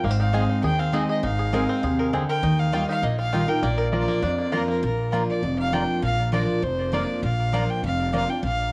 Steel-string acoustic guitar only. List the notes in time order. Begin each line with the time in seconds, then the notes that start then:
0.04 G#2
0.33 G#3 C4 D#4 G#4
0.63 D#3
0.92 G#3 C4 D#4 G#4
1.23 G#2
1.53 G#3 C4 D#4 G#4
1.83 C3
2.13 D3
2.43 D#3
2.72 D#3 G3 D#4 F4
3.03 A#2
3.33 D#3 G3 D#4 F4
3.48 D#4 F4
3.63 A#2
3.92 F3 A#3 D4 F4
4.22 F2
4.52 F3 A#3 D4 F4
4.83 A#2
5.12 F3 A#3 D4 F4
5.43 F2
5.72 F3 A#3 D4 F4
6.02 A#2
6.32 F3 A#3 D4 F4
6.62 F2
6.92 F3 A#3 D4 F4
7.23 A#2
7.52 F3 A#3 D4 F4
7.84 F2
8.13 F3 A#3 D4 F4
8.28 D4 F4
8.43 A#2